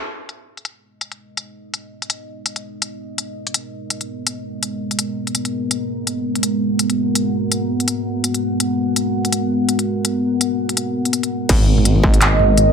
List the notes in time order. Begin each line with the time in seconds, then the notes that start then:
Already playing: G#3 B3 A#4 D#5
0.29 closed hi-hat
0.57 closed hi-hat
0.65 closed hi-hat
1.01 closed hi-hat
1.12 closed hi-hat
1.37 closed hi-hat
1.74 closed hi-hat
2.02 closed hi-hat
2.10 closed hi-hat
2.46 closed hi-hat
2.56 closed hi-hat
2.82 closed hi-hat
3.18 closed hi-hat
3.47 closed hi-hat
3.54 closed hi-hat
3.90 closed hi-hat
4.01 closed hi-hat
4.27 closed hi-hat
4.63 closed hi-hat
4.91 closed hi-hat
4.99 closed hi-hat
5.27 closed hi-hat
5.35 closed hi-hat
5.45 closed hi-hat
5.71 F#5, closed hi-hat
6.07 closed hi-hat
6.35 closed hi-hat
6.43 closed hi-hat
6.79 closed hi-hat
6.90 closed hi-hat
7.15 closed hi-hat
7.52 closed hi-hat
7.80 closed hi-hat
7.88 closed hi-hat
8.24 closed hi-hat
8.34 closed hi-hat
8.60 closed hi-hat
8.96 closed hi-hat
9.25 closed hi-hat
9.33 closed hi-hat
9.69 closed hi-hat
9.79 closed hi-hat
10.05 closed hi-hat
10.41 closed hi-hat
10.69 closed hi-hat
10.77 closed hi-hat
11.05 closed hi-hat
11.13 closed hi-hat
11.23 closed hi-hat
11.49 G#1 G#3 B3 A#4 D#5, kick, closed hi-hat, crash
11.60 mid tom
11.78 mid tom
11.85 closed hi-hat
11.96 mid tom
12.04 kick
12.14 closed hi-hat
12.21 clap, closed hi-hat, mid tom
12.39 mid tom
12.58 closed hi-hat, mid tom